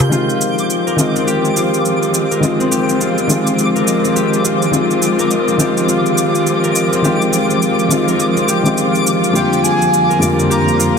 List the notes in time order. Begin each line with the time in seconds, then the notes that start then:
Already playing: C4 F4 G4 A#4 D5 G6
0.00 darbuka ka, darbuka tek, shaker
0.09 D#3 G#3 C4 F4 D6, shaker
0.13 F4
0.21 F3 C4
0.30 shaker
0.41 G#3, shaker
0.58 shaker
0.70 shaker
0.87 F4 A#4, shaker
0.96 D#3 G#3 C4 F4 D#5, shaker
1.16 C4, shaker
1.27 G4, shaker
1.45 shaker
1.56 F4, shaker
1.74 shaker
1.85 shaker
2.03 shaker
2.14 shaker
2.31 A#4, shaker
2.40 D#3 G#3 C4 D#5, shaker
2.44 F4
2.59 C4, shaker
2.71 G4, shaker
2.89 shaker
3.00 F4, shaker
3.18 shaker
3.27 D#3 G#3 C4, shaker
3.31 F4
3.47 shaker
3.59 shaker
3.75 A#4, shaker
3.87 D#5, shaker
4.04 C4, shaker
4.16 G4, shaker
4.33 shaker
4.44 F4, shaker
4.62 shaker
4.71 D#3 G#3 C4 F4, shaker
4.91 shaker
5.02 shaker
5.19 A#4, shaker
5.31 D#5, shaker
5.48 C4, shaker
5.57 D#3 G#3 C4 G4, shaker
5.62 F4
5.77 shaker
5.89 F4, shaker
6.06 shaker
6.18 shaker
6.35 shaker
6.47 shaker
6.64 A#4, shaker
6.75 D#5, shaker
6.92 C4, shaker
7.02 D#3 G#3 C4 F4 G4, shaker
7.22 shaker
7.33 F4, shaker
7.50 shaker
7.62 shaker
7.79 shaker
7.88 D#3 G#3 C4 F4, shaker
8.08 A#4, shaker
8.20 D#5, shaker
8.36 C4, shaker
8.48 G4, shaker
8.63 D#3 G#3 C4, shaker
8.67 F4
8.77 F4, shaker
8.95 shaker
9.07 shaker
9.24 shaker
9.33 F2 D3 G3 A#3 F4 G5, shaker
9.50 D3, shaker
9.64 G#5, shaker
9.73 G3
9.82 shaker
9.94 shaker
10.10 A#3 A#4, shaker
10.19 F2 D3 G3 A#3 F4 D5, shaker
10.38 C4, shaker
10.50 G4 A#5, shaker
10.68 shaker
10.79 F4, shaker